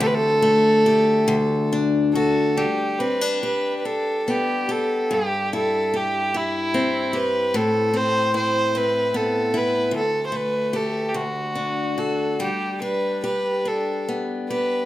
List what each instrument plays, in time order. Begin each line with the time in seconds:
Already playing: steel-string acoustic guitar A3
0.00 steel-string acoustic guitar D2, fiddle A4
0.06 fiddle B4
0.15 fiddle A4
0.42 steel-string acoustic guitar A3
0.86 steel-string acoustic guitar G4
1.28 steel-string acoustic guitar D2
1.73 steel-string acoustic guitar D4
2.13 steel-string acoustic guitar F#4, fiddle A4
2.57 steel-string acoustic guitar G3, fiddle G4
2.99 steel-string acoustic guitar C4, fiddle B4
3.21 steel-string acoustic guitar D4
3.43 steel-string acoustic guitar G4, fiddle B4
3.78 fiddle B4
3.85 steel-string acoustic guitar D4, fiddle A4
4.20 fiddle A4
4.28 steel-string acoustic guitar B3, fiddle G4
4.69 steel-string acoustic guitar G4, fiddle A4
5.11 steel-string acoustic guitar G2, fiddle G4
5.53 steel-string acoustic guitar E4, fiddle A4
5.94 steel-string acoustic guitar G4, fiddle G4
6.34 steel-string acoustic guitar E4, fiddle E4
6.74 steel-string acoustic guitar C4
7.13 steel-string acoustic guitar G4, fiddle B4
7.54 steel-string acoustic guitar A2, fiddle A4
7.93 steel-string acoustic guitar C4, fiddle C5
8.34 steel-string acoustic guitar E4, fiddle C5
8.75 steel-string acoustic guitar C4, fiddle B4
9.14 steel-string acoustic guitar B3, fiddle A4
9.54 steel-string acoustic guitar E4, fiddle B4
9.91 steel-string acoustic guitar D2
9.96 fiddle A4
10.27 fiddle C5
10.32 steel-string acoustic guitar A3, fiddle B4
10.73 steel-string acoustic guitar G4, fiddle A4
11.09 fiddle G4
11.14 steel-string acoustic guitar D2, fiddle F#4
11.55 steel-string acoustic guitar D4
11.98 steel-string acoustic guitar F#4, fiddle A4
12.40 steel-string acoustic guitar G3, fiddle G4
12.81 steel-string acoustic guitar D4, fiddle B4
13.24 steel-string acoustic guitar G4, fiddle B4
13.65 steel-string acoustic guitar D4, fiddle A4
14.09 steel-string acoustic guitar B3
14.49 steel-string acoustic guitar G4, fiddle B4